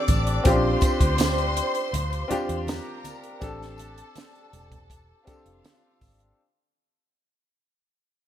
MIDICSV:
0, 0, Header, 1, 6, 480
1, 0, Start_track
1, 0, Key_signature, -1, "major"
1, 0, Tempo, 740924
1, 292, Time_signature, 4, 2, 24, 8
1, 5362, End_track
2, 0, Start_track
2, 0, Title_t, "String section"
2, 0, Program_c, 0, 48
2, 0, Note_on_c, 0, 74, 85
2, 0, Note_on_c, 0, 86, 97
2, 266, Note_off_c, 0, 74, 0
2, 266, Note_off_c, 0, 86, 0
2, 298, Note_on_c, 0, 84, 99
2, 301, Note_on_c, 0, 72, 91
2, 1709, Note_off_c, 0, 84, 0
2, 1710, Note_off_c, 0, 72, 0
2, 1732, Note_on_c, 0, 82, 91
2, 1736, Note_on_c, 0, 70, 80
2, 2202, Note_off_c, 0, 82, 0
2, 2204, Note_off_c, 0, 70, 0
2, 2222, Note_on_c, 0, 81, 89
2, 2224, Note_on_c, 0, 69, 84
2, 3393, Note_off_c, 0, 81, 0
2, 3394, Note_off_c, 0, 69, 0
2, 3411, Note_on_c, 0, 65, 71
2, 3411, Note_on_c, 0, 77, 82
2, 4117, Note_off_c, 0, 65, 0
2, 4117, Note_off_c, 0, 77, 0
2, 5362, End_track
3, 0, Start_track
3, 0, Title_t, "Grand piano"
3, 0, Program_c, 1, 0
3, 0, Control_c, 1, 64, 127
3, 0, Note_on_c, 1, 60, 81
3, 0, Note_on_c, 1, 62, 85
3, 0, Note_on_c, 1, 67, 83
3, 0, Note_on_c, 1, 69, 94
3, 282, Note_off_c, 1, 60, 0
3, 282, Note_on_c, 1, 60, 89
3, 290, Note_on_c, 1, 61, 64
3, 296, Note_on_c, 1, 65, 77
3, 301, Control_c, 1, 64, 0
3, 302, Note_off_c, 1, 67, 0
3, 302, Note_on_c, 1, 67, 97
3, 306, Note_off_c, 1, 62, 0
3, 306, Note_off_c, 1, 69, 0
3, 331, Note_on_c, 1, 62, 82
3, 333, Note_off_c, 1, 61, 0
3, 407, Control_c, 1, 64, 127
3, 921, Note_off_c, 1, 60, 0
3, 928, Note_off_c, 1, 65, 0
3, 931, Note_off_c, 1, 67, 0
3, 946, Note_off_c, 1, 62, 0
3, 1476, Note_on_c, 1, 60, 90
3, 1486, Note_on_c, 1, 62, 88
3, 1492, Note_on_c, 1, 65, 83
3, 1500, Note_on_c, 1, 67, 103
3, 1960, Note_off_c, 1, 60, 0
3, 1964, Note_off_c, 1, 62, 0
3, 1967, Note_off_c, 1, 65, 0
3, 1972, Note_off_c, 1, 67, 0
3, 2200, Note_on_c, 1, 60, 80
3, 2206, Note_on_c, 1, 62, 79
3, 2214, Note_on_c, 1, 67, 75
3, 2221, Control_c, 1, 64, 0
3, 2221, Note_on_c, 1, 69, 100
3, 2330, Control_c, 1, 64, 127
3, 2840, Note_off_c, 1, 60, 0
3, 2843, Note_off_c, 1, 62, 0
3, 2847, Note_off_c, 1, 67, 0
3, 2851, Note_off_c, 1, 69, 0
3, 3399, Note_on_c, 1, 60, 79
3, 3406, Note_on_c, 1, 62, 69
3, 3413, Note_on_c, 1, 67, 72
3, 3420, Note_on_c, 1, 69, 93
3, 3881, Note_off_c, 1, 60, 0
3, 3885, Note_off_c, 1, 62, 0
3, 3888, Note_off_c, 1, 67, 0
3, 3892, Note_off_c, 1, 69, 0
3, 4139, Control_c, 1, 64, 0
3, 5362, End_track
4, 0, Start_track
4, 0, Title_t, "Fingered electric bass"
4, 0, Program_c, 2, 33
4, 57, Note_on_c, 2, 33, 100
4, 246, Note_off_c, 2, 33, 0
4, 295, Note_on_c, 2, 34, 98
4, 485, Note_off_c, 2, 34, 0
4, 652, Note_on_c, 2, 38, 86
4, 1035, Note_off_c, 2, 38, 0
4, 1252, Note_on_c, 2, 38, 88
4, 1443, Note_off_c, 2, 38, 0
4, 1612, Note_on_c, 2, 40, 77
4, 1804, Note_off_c, 2, 40, 0
4, 2214, Note_on_c, 2, 33, 97
4, 2596, Note_off_c, 2, 33, 0
4, 2936, Note_on_c, 2, 28, 84
4, 3317, Note_off_c, 2, 28, 0
4, 3534, Note_on_c, 2, 29, 70
4, 3629, Note_off_c, 2, 29, 0
4, 3896, Note_on_c, 2, 32, 84
4, 4086, Note_off_c, 2, 32, 0
4, 5362, End_track
5, 0, Start_track
5, 0, Title_t, "Muted fingered electric bass strokes"
5, 3418, Note_on_c, 9, 29, 44
5, 3482, Note_off_c, 9, 29, 0
5, 5362, End_track
6, 0, Start_track
6, 0, Title_t, "Drums"
6, 52, Note_on_c, 9, 42, 69
6, 53, Note_on_c, 9, 54, 50
6, 55, Note_on_c, 9, 36, 88
6, 55, Note_on_c, 9, 63, 56
6, 117, Note_off_c, 9, 42, 0
6, 118, Note_off_c, 9, 54, 0
6, 119, Note_off_c, 9, 36, 0
6, 120, Note_off_c, 9, 63, 0
6, 174, Note_on_c, 9, 42, 43
6, 239, Note_off_c, 9, 42, 0
6, 292, Note_on_c, 9, 42, 78
6, 292, Note_on_c, 9, 54, 46
6, 294, Note_on_c, 9, 36, 119
6, 295, Note_on_c, 9, 62, 54
6, 356, Note_off_c, 9, 42, 0
6, 356, Note_off_c, 9, 54, 0
6, 359, Note_off_c, 9, 36, 0
6, 360, Note_off_c, 9, 62, 0
6, 525, Note_on_c, 9, 54, 43
6, 531, Note_on_c, 9, 36, 97
6, 531, Note_on_c, 9, 42, 84
6, 541, Note_on_c, 9, 62, 34
6, 589, Note_off_c, 9, 54, 0
6, 596, Note_off_c, 9, 36, 0
6, 596, Note_off_c, 9, 42, 0
6, 606, Note_off_c, 9, 62, 0
6, 651, Note_on_c, 9, 36, 89
6, 652, Note_on_c, 9, 42, 60
6, 715, Note_off_c, 9, 36, 0
6, 717, Note_off_c, 9, 42, 0
6, 766, Note_on_c, 9, 42, 86
6, 773, Note_on_c, 9, 63, 69
6, 777, Note_on_c, 9, 54, 86
6, 783, Note_on_c, 9, 38, 91
6, 831, Note_off_c, 9, 42, 0
6, 838, Note_off_c, 9, 63, 0
6, 841, Note_off_c, 9, 54, 0
6, 848, Note_off_c, 9, 38, 0
6, 895, Note_on_c, 9, 42, 34
6, 960, Note_off_c, 9, 42, 0
6, 1014, Note_on_c, 9, 54, 34
6, 1016, Note_on_c, 9, 42, 69
6, 1078, Note_off_c, 9, 54, 0
6, 1081, Note_off_c, 9, 42, 0
6, 1132, Note_on_c, 9, 42, 45
6, 1197, Note_off_c, 9, 42, 0
6, 1256, Note_on_c, 9, 42, 88
6, 1257, Note_on_c, 9, 64, 62
6, 1321, Note_off_c, 9, 42, 0
6, 1322, Note_off_c, 9, 64, 0
6, 1378, Note_on_c, 9, 42, 33
6, 1443, Note_off_c, 9, 42, 0
6, 1494, Note_on_c, 9, 62, 58
6, 1494, Note_on_c, 9, 64, 82
6, 1495, Note_on_c, 9, 42, 69
6, 1499, Note_on_c, 9, 54, 47
6, 1559, Note_off_c, 9, 42, 0
6, 1559, Note_off_c, 9, 62, 0
6, 1559, Note_off_c, 9, 64, 0
6, 1563, Note_off_c, 9, 54, 0
6, 1615, Note_on_c, 9, 42, 56
6, 1680, Note_off_c, 9, 42, 0
6, 1731, Note_on_c, 9, 63, 63
6, 1737, Note_on_c, 9, 42, 83
6, 1744, Note_on_c, 9, 38, 111
6, 1746, Note_on_c, 9, 54, 69
6, 1795, Note_off_c, 9, 63, 0
6, 1802, Note_off_c, 9, 42, 0
6, 1809, Note_off_c, 9, 38, 0
6, 1811, Note_off_c, 9, 54, 0
6, 1971, Note_on_c, 9, 63, 59
6, 1972, Note_on_c, 9, 54, 48
6, 1975, Note_on_c, 9, 42, 64
6, 2036, Note_off_c, 9, 63, 0
6, 2037, Note_off_c, 9, 54, 0
6, 2040, Note_off_c, 9, 42, 0
6, 2096, Note_on_c, 9, 42, 45
6, 2161, Note_off_c, 9, 42, 0
6, 2210, Note_on_c, 9, 54, 49
6, 2214, Note_on_c, 9, 36, 111
6, 2214, Note_on_c, 9, 62, 53
6, 2215, Note_on_c, 9, 42, 81
6, 2275, Note_off_c, 9, 54, 0
6, 2279, Note_off_c, 9, 36, 0
6, 2279, Note_off_c, 9, 62, 0
6, 2280, Note_off_c, 9, 42, 0
6, 2343, Note_on_c, 9, 38, 36
6, 2408, Note_off_c, 9, 38, 0
6, 2446, Note_on_c, 9, 54, 46
6, 2457, Note_on_c, 9, 62, 33
6, 2458, Note_on_c, 9, 42, 82
6, 2511, Note_off_c, 9, 54, 0
6, 2522, Note_off_c, 9, 62, 0
6, 2523, Note_off_c, 9, 42, 0
6, 2577, Note_on_c, 9, 42, 58
6, 2641, Note_off_c, 9, 42, 0
6, 2692, Note_on_c, 9, 42, 82
6, 2693, Note_on_c, 9, 63, 64
6, 2698, Note_on_c, 9, 54, 84
6, 2708, Note_on_c, 9, 38, 95
6, 2757, Note_off_c, 9, 42, 0
6, 2757, Note_off_c, 9, 63, 0
6, 2763, Note_off_c, 9, 54, 0
6, 2773, Note_off_c, 9, 38, 0
6, 2821, Note_on_c, 9, 42, 31
6, 2885, Note_off_c, 9, 42, 0
6, 2934, Note_on_c, 9, 54, 28
6, 2936, Note_on_c, 9, 64, 61
6, 2937, Note_on_c, 9, 42, 63
6, 2999, Note_off_c, 9, 54, 0
6, 3001, Note_off_c, 9, 42, 0
6, 3001, Note_off_c, 9, 64, 0
6, 3055, Note_on_c, 9, 36, 86
6, 3057, Note_on_c, 9, 42, 47
6, 3061, Note_on_c, 9, 64, 74
6, 3120, Note_off_c, 9, 36, 0
6, 3122, Note_off_c, 9, 42, 0
6, 3125, Note_off_c, 9, 64, 0
6, 3173, Note_on_c, 9, 36, 84
6, 3176, Note_on_c, 9, 54, 32
6, 3178, Note_on_c, 9, 42, 82
6, 3238, Note_off_c, 9, 36, 0
6, 3241, Note_off_c, 9, 54, 0
6, 3243, Note_off_c, 9, 42, 0
6, 3415, Note_on_c, 9, 42, 73
6, 3415, Note_on_c, 9, 62, 54
6, 3418, Note_on_c, 9, 36, 94
6, 3420, Note_on_c, 9, 54, 43
6, 3479, Note_off_c, 9, 62, 0
6, 3480, Note_off_c, 9, 42, 0
6, 3482, Note_off_c, 9, 36, 0
6, 3485, Note_off_c, 9, 54, 0
6, 3536, Note_on_c, 9, 42, 54
6, 3601, Note_off_c, 9, 42, 0
6, 3651, Note_on_c, 9, 63, 58
6, 3657, Note_on_c, 9, 42, 80
6, 3664, Note_on_c, 9, 38, 110
6, 3666, Note_on_c, 9, 54, 68
6, 3715, Note_off_c, 9, 63, 0
6, 3722, Note_off_c, 9, 42, 0
6, 3729, Note_off_c, 9, 38, 0
6, 3730, Note_off_c, 9, 54, 0
6, 3893, Note_on_c, 9, 63, 58
6, 3896, Note_on_c, 9, 36, 85
6, 3896, Note_on_c, 9, 54, 43
6, 3897, Note_on_c, 9, 46, 65
6, 3958, Note_off_c, 9, 63, 0
6, 3960, Note_off_c, 9, 36, 0
6, 3960, Note_off_c, 9, 54, 0
6, 3962, Note_off_c, 9, 46, 0
6, 4018, Note_on_c, 9, 42, 42
6, 4082, Note_off_c, 9, 42, 0
6, 5362, End_track
0, 0, End_of_file